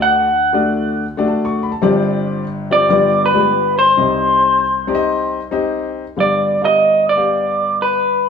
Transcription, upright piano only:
0.00 1.77 D2 medium
0.00 1.77 D3 medium
0.00 0.26 A3 medium
0.00 0.26 D4 medium
0.00 0.26 F#4 medium
0.00 0.26 D5 medium
0.53 1.02 A3 medium
0.53 1.02 D4 medium
0.53 1.03 F#4 medium
0.53 1.03 D5 medium
1.17 1.69 A3 medium
1.17 1.69 D4 medium
1.17 1.69 F#4 medium
1.17 1.69 D5 medium
1.28 1.44 A5 medium
1.45 1.61 C#6 medium
1.63 1.72 B5 medium
1.72 1.98 A5 medium
1.82 2.86 G1 medium
1.82 2.86 G2 medium
1.82 2.43 C4 medium
1.82 2.44 F4 medium
1.82 2.44 G4 medium
1.82 2.44 D5 loud
2.70 2.90 C4 medium
2.70 2.88 F4 medium
2.70 2.88 G4 medium
2.70 2.89 D5 medium
2.89 3.95 G1 medium
2.89 3.95 G2 medium
2.89 3.29 B3 medium
2.89 3.29 F4 medium
2.89 3.29 G4 medium
2.89 3.29 D5 loud
3.33 3.38 G#3 medium
3.33 3.86 F4 medium
3.33 3.86 G4 medium
3.33 3.86 D5 medium
3.40 3.89 B3 medium
3.97 6.12 C2 medium
3.97 6.12 C3 medium
3.97 4.60 C4 medium
3.97 4.60 D#4 medium
3.97 4.60 G4 medium
3.97 4.61 D#5 medium
4.87 5.37 C4 medium
4.87 5.37 D#4 medium
4.87 5.37 G4 medium
4.87 4.93 D5 medium
4.95 5.41 D#5 loud
5.51 6.03 C4 medium
5.51 6.03 D#4 medium
5.51 6.04 G4 medium
5.51 6.04 D#5 medium
6.16 8.29 G1 medium
6.16 8.29 G2 medium
6.16 6.54 B3 medium
6.16 6.54 G4 medium
6.16 6.54 F5 medium
6.61 7.05 B3 medium
6.61 7.05 G4 medium
6.61 7.06 F5 medium
7.16 7.96 B3 medium
7.16 7.97 G4 medium
7.16 7.97 F5 medium

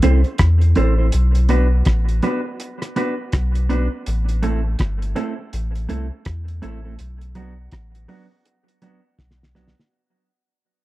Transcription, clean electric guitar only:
0.03 0.20 C4 medium
0.03 0.20 E4 medium
0.03 0.20 A4 medium
0.03 0.20 C5 medium
0.76 0.93 C4 medium
0.76 0.93 E4 medium
0.76 0.93 A4 medium
0.76 0.94 C5 medium
0.98 1.07 C4 soft
0.98 1.07 E4 medium
0.98 1.07 A4 medium
0.98 1.07 C5 medium
1.49 1.66 B3 medium
1.49 1.66 D4 medium
1.49 1.67 F#4 medium
1.49 1.67 B4 medium
2.23 2.40 B3 medium
2.23 2.40 D4 medium
2.23 2.40 F#4 medium
2.23 2.40 B4 medium
2.45 muted clean electric guitar stroke soft
2.96 3.13 B3 medium
2.96 3.13 D4 medium
2.96 3.13 F#4 medium
2.96 3.14 B4 loud
3.69 3.86 B3 medium
3.69 3.86 D4 loud
3.69 3.87 F#4 medium
3.69 3.87 B4 medium
4.43 4.59 A3 medium
4.43 4.60 C4 loud
4.43 4.60 E4 loud
4.43 4.60 A4 loud
5.16 5.33 A3 medium
5.16 5.33 C4 medium
5.16 5.33 E4 medium
5.16 5.33 A4 loud
5.38 muted clean electric guitar stroke soft
5.89 6.06 A3 medium
5.89 6.06 C4 medium
5.89 6.06 E4 medium
5.89 6.06 A4 medium
6.62 6.79 A3 medium
6.62 6.79 C4 medium
6.62 6.79 E4 loud
6.62 6.80 A4 loud
6.85 6.94 A3 medium
6.85 6.94 C4 medium
6.85 6.93 E4 medium
6.85 6.93 A4 medium
7.35 7.52 F#3 medium
7.35 7.53 B3 medium
7.35 7.53 D4 medium
7.35 7.53 F#4 loud
8.08 8.25 F#3 medium
8.08 8.26 B3 medium
8.08 8.26 D4 medium
8.08 8.26 F#4 medium
8.31 muted clean electric guitar stroke soft
8.82 8.99 F#3 medium
8.82 8.99 B3 medium
8.82 8.99 D4 medium
8.82 9.00 F#4 medium
9.55 9.72 F#3 medium
9.55 9.72 B3 loud
9.55 9.72 D4 loud
9.55 9.73 F#4 medium

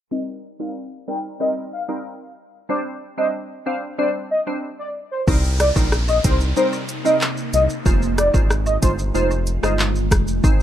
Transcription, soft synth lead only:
0.12 0.21 D#5 loud
0.60 0.70 F5 medium
1.08 1.18 G5 medium
1.41 1.51 D#5 medium
1.73 1.83 F5 medium
2.70 2.80 D5 loud
3.18 3.28 D#5 medium
3.66 3.76 F5 medium
3.99 4.08 D5 medium
4.31 4.41 D#5 medium
4.79 4.89 D5 medium
5.11 5.21 C5 medium
5.60 5.70 D5 medium
6.08 6.18 D#5 medium
6.24 6.34 C5 medium
6.57 6.67 C5 medium
7.05 7.15 D#5 medium
7.54 7.63 D#5 medium
8.18 8.28 D5 medium
8.66 8.76 D#5 medium
8.83 8.92 C5 medium
9.15 9.25 C5 medium
9.63 9.73 D#5 medium

